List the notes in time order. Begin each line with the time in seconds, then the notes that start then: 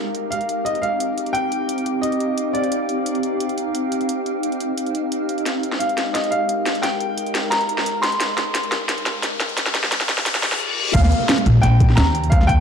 Already playing: C4 D#4 G4 F5 D6
0.15 closed hi-hat
0.31 F5, closed hi-hat
0.41 closed hi-hat
0.49 closed hi-hat
0.65 D#5, closed hi-hat
0.75 closed hi-hat
0.82 F5, closed hi-hat
1.00 closed hi-hat
1.18 closed hi-hat
1.26 closed hi-hat
1.33 G5, closed hi-hat
1.52 closed hi-hat
1.69 closed hi-hat
1.78 closed hi-hat
1.86 closed hi-hat
2.02 D#5, closed hi-hat
2.12 closed hi-hat
2.20 closed hi-hat
2.38 closed hi-hat
2.53 D5, closed hi-hat
2.64 closed hi-hat
2.72 closed hi-hat
2.89 closed hi-hat
3.06 closed hi-hat
3.15 closed hi-hat
3.23 closed hi-hat
3.40 closed hi-hat
3.49 closed hi-hat
3.58 closed hi-hat
3.75 closed hi-hat
3.92 closed hi-hat
4.01 closed hi-hat
4.09 closed hi-hat
4.26 closed hi-hat
4.43 closed hi-hat
4.52 closed hi-hat
4.60 closed hi-hat
4.78 closed hi-hat
4.86 closed hi-hat
4.95 closed hi-hat
5.12 closed hi-hat
5.29 G#3 A#4, closed hi-hat
5.38 closed hi-hat
5.46 snare, closed hi-hat, riser
5.63 closed hi-hat
5.72 snare
5.79 F5, closed hi-hat
5.89 closed hi-hat
5.98 snare, closed hi-hat
6.13 D#5, snare, closed hi-hat
6.24 closed hi-hat
6.31 F5, closed hi-hat
6.49 closed hi-hat
6.66 snare, closed hi-hat
6.75 closed hi-hat
6.82 G5, snare, closed hi-hat
7.00 closed hi-hat
7.18 closed hi-hat
7.26 closed hi-hat
7.35 snare, closed hi-hat
7.50 A#5, snare, closed hi-hat
7.61 closed hi-hat
7.69 closed hi-hat
7.78 snare
7.86 closed hi-hat
8.02 C6, snare, closed hi-hat
8.12 closed hi-hat
8.20 snare, closed hi-hat
8.38 snare, closed hi-hat
8.55 snare, closed hi-hat
8.63 closed hi-hat
8.72 snare, closed hi-hat
8.89 snare, closed hi-hat
8.98 closed hi-hat
9.06 snare, closed hi-hat
9.23 snare, closed hi-hat
9.40 snare, closed hi-hat
9.49 closed hi-hat
9.57 snare, closed hi-hat
9.66 snare
9.75 snare, closed hi-hat
9.83 snare
9.92 snare, closed hi-hat
10.01 snare, closed hi-hat
10.09 snare, closed hi-hat
10.18 snare
10.26 snare, closed hi-hat, reverse cymbal
10.35 snare, closed hi-hat
10.43 snare, closed hi-hat
10.52 snare
10.93 D#2 F5, kick, closed hi-hat, crash, downlifter
11.04 snare
11.12 closed hi-hat
11.29 snare, closed hi-hat
11.38 snare, closed hi-hat
11.46 A#1, closed hi-hat
11.62 A#1 G5, snare, closed hi-hat
11.80 kick, closed hi-hat
11.89 snare
11.96 D#2 A#5, snare, closed hi-hat
12.15 closed hi-hat
12.24 closed hi-hat
12.30 F5, kick, closed hi-hat
12.41 snare
12.47 G5, kick, closed hi-hat